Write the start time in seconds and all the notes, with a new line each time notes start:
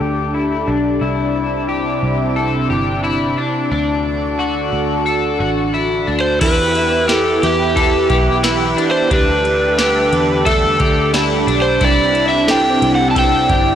Already playing: D3 D4 G4 A4
0.01 D2 G4
0.34 E4
0.68 B1 D4
1.01 C2 C3 C4 E4
1.69 G4
2.03 C2
2.36 A4
2.70 G1 G4
3.04 E4
3.38 D4
3.71 D2 D3 D4 F#4 A4
4.39 F#4
4.73 D2
5.06 A4
5.40 A1 F#4
5.74 E4
6.07 D2 D4
6.21 C5
6.40 E2 E3 B3 E4 G4 B4, kick, crash, ride
6.44 G4
6.74 E4 G4, ride
6.79 B3
7.07 E3 B3 E4 G4, snare, ride, tambourine
7.15 A4
7.42 E2 E4 G4, ride
7.46 B3
7.75 E3 B3 E4 A4, kick, ride
7.80 G4
8.09 B1 E4 G4, kick, ride
8.14 B3
8.43 E3 B3 E4 G4, snare, ride, tambourine
8.77 D4 E4 G4, ride
8.81 B3
8.91 C5
9.10 D2 D3 G3 A3 D4 G4 A4 B4, kick, ride
9.44 D4 G4, ride
9.49 A3
9.78 D3 G3 A3 D4 G4, snare, ride, tambourine
10.12 E2 D4 G4, ride
10.16 A3
10.44 G3 A3 D4 A4 E5, kick, ride
10.49 G4
10.78 D2 D4 G4, kick, ride
10.83 A3
11.12 D3 G3 A3 D4 E4 G4 D5, snare, ride, tambourine
11.46 B1 D4 G4, ride
11.51 A3
11.62 C5
11.81 C2 C3 E3 C4 D4 E4 G4 D5, kick, ride
12.13 D4 G4, ride
12.18 C4
12.29 E5
12.47 C3 E3 C4 D4 G4 A4 G5, snare, ride, tambourine
12.70 C5
12.81 C2 D4 G4, ride
12.86 C4
12.95 F#5
13.11 E3 A5
13.15 C4 D4 A4 G5, kick, ride
13.20 G4
13.48 G1 D4 G4, kick, ride
13.53 C4